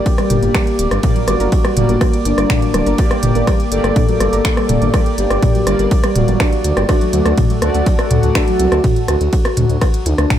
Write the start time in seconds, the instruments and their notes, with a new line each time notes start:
Already playing: analog polysynth A#3 G4 D5, analog synth pad A#3 D5 D6, soft synth lead G4
0.06 kick, closed hi-hat, ride
0.18 synth arpeggio sound G3 G4, cross-stick, closed hi-hat
0.30 detuned saw bass G1, closed hi-hat, mid tom
0.43 detuned saw bass G1, synth arpeggio sound A#3 A#4, closed hi-hat
0.55 synth arpeggio sound G3 G4, finger snap, kick, cross-stick, closed hi-hat, ride
0.67 closed hi-hat
0.79 detuned saw bass D1, closed hi-hat
0.91 detuned saw bass G1, cross-stick, closed hi-hat
1.03 analog polysynth G3 A#3 D5, synth arpeggio sound D4 D5, kick, closed hi-hat, mid tom, ride
1.16 synth arpeggio sound F#3 F#4, closed hi-hat
1.28 detuned saw bass G1, synth arpeggio sound G3 G4, soft synth lead F#4, cross-stick, closed hi-hat
1.40 detuned saw bass G1, synth arpeggio sound A#4 A#5, closed hi-hat
1.52 kick, closed hi-hat, ride
1.65 synth arpeggio sound G3 G4, cross-stick, closed hi-hat
1.77 detuned saw bass G1, analog polysynth G3 A#3 D5, closed hi-hat, mid tom
1.89 detuned saw bass G1, synth arpeggio sound A#3 A#4, closed hi-hat
2.01 synth arpeggio sound G3 G4, kick, cross-stick, closed hi-hat, ride
2.13 closed hi-hat
2.25 detuned saw bass G1, soft synth lead D4, closed hi-hat
2.38 detuned saw bass G1, cross-stick, closed hi-hat
2.50 synth arpeggio sound D4 D5, finger snap, kick, closed hi-hat, mid tom, ride
2.62 synth arpeggio sound F#3 F#4, closed hi-hat
2.74 detuned saw bass D1, synth arpeggio sound G3 G4, cross-stick, closed hi-hat
2.86 detuned saw bass G1, synth arpeggio sound A#4 A#5, closed hi-hat
2.98 analog polysynth A#3 G4 D5, soft synth lead G4, kick, closed hi-hat, ride
3.11 synth arpeggio sound G3 G4, cross-stick, closed hi-hat
3.23 detuned saw bass G1, closed hi-hat, mid tom
3.35 detuned saw bass G1, synth arpeggio sound A#3 A#4, closed hi-hat
3.47 synth arpeggio sound G3 G4, kick, cross-stick, closed hi-hat, ride
3.60 closed hi-hat
3.72 detuned saw bass G1, analog polysynth A#3 G4 D5, soft synth lead A4, closed hi-hat
3.84 detuned saw bass G1, cross-stick, closed hi-hat
3.96 synth arpeggio sound D4 D5, kick, closed hi-hat, mid tom, ride
4.08 synth arpeggio sound F#3 F#4, closed hi-hat
4.20 detuned saw bass G1, synth arpeggio sound G3 G4, cross-stick, closed hi-hat
4.33 detuned saw bass G1, synth arpeggio sound A#4 A#5, closed hi-hat
4.45 finger snap, kick, closed hi-hat, ride
4.57 synth arpeggio sound G3 G4, cross-stick, closed hi-hat
4.69 detuned saw bass D1, closed hi-hat, mid tom
4.82 detuned saw bass G1, synth arpeggio sound A#3 A#4, closed hi-hat
4.94 synth arpeggio sound G3 G4, analog polysynth A#3 G4 D5, kick, cross-stick, closed hi-hat, ride
5.06 closed hi-hat
5.18 detuned saw bass G1, soft synth lead G4, closed hi-hat
5.30 detuned saw bass G1, cross-stick, closed hi-hat
5.42 synth arpeggio sound D4 D5, kick, closed hi-hat, mid tom, ride
5.55 synth arpeggio sound F#3 F#4, closed hi-hat
5.67 detuned saw bass G1, analog polysynth G3 A#3 D5, synth arpeggio sound G3 G4, cross-stick, closed hi-hat
5.79 detuned saw bass G1, synth arpeggio sound A#4 A#5, closed hi-hat
5.91 kick, closed hi-hat, ride
6.04 synth arpeggio sound G3 G4, cross-stick, closed hi-hat
6.16 detuned saw bass D1, soft synth lead F#4, closed hi-hat, mid tom
6.28 detuned saw bass G1, synth arpeggio sound F#3 F#4, closed hi-hat
6.40 synth arpeggio sound D4 D5, finger snap, kick, cross-stick, closed hi-hat, ride
6.52 closed hi-hat
6.64 detuned saw bass D2, closed hi-hat
6.77 detuned saw bass G1, synth arpeggio sound G4 G5, cross-stick, closed hi-hat
6.89 analog polysynth A3 F#4 D5, synth arpeggio sound D4 D5, soft synth lead F#4, analog synth pad A4 F#5, kick, cross-stick, closed hi-hat, ride
7.01 synth arpeggio sound F#3 F#4, closed hi-hat
7.13 detuned saw bass D2, synth arpeggio sound F#3 F#4, closed hi-hat
7.26 detuned saw bass D2, synth arpeggio sound A4 A5, cross-stick, closed hi-hat
7.38 kick, closed hi-hat, mid tom, ride
7.50 synth arpeggio sound F#3 F#4, closed hi-hat
7.62 detuned saw bass D2, analog polysynth A3 F#4 D5, soft synth lead F#4, cross-stick, closed hi-hat
7.74 detuned saw bass D2, synth arpeggio sound A3 A4, closed hi-hat
7.86 synth arpeggio sound F#3 F#4, kick, closed hi-hat, ride
7.99 cross-stick, closed hi-hat
8.11 detuned saw bass D2, closed hi-hat, mid tom
8.23 detuned saw bass D2, closed hi-hat
8.35 synth arpeggio sound D4 D5, finger snap, kick, cross-stick, closed hi-hat, ride
8.48 synth arpeggio sound F#3 F#4, closed hi-hat
8.60 detuned saw bass C2, synth arpeggio sound F#3 F#4, closed hi-hat
8.72 detuned saw bass D2, synth arpeggio sound A4 A5, cross-stick, closed hi-hat
8.84 kick, closed hi-hat, mid tom, ride
8.96 closed hi-hat
9.08 detuned saw bass D2, soft synth lead F#4, cross-stick, closed hi-hat
9.21 detuned saw bass D2, closed hi-hat
9.33 kick, closed hi-hat, ride
9.45 cross-stick, closed hi-hat
9.57 detuned saw bass D2, closed hi-hat, mid tom
9.70 detuned saw bass D2, closed hi-hat
9.81 kick, cross-stick, closed hi-hat, ride
9.94 closed hi-hat
10.06 detuned saw bass D2, soft synth lead D4, closed hi-hat
10.18 detuned saw bass D2, cross-stick, closed hi-hat
10.30 finger snap, kick, closed hi-hat, mid tom, ride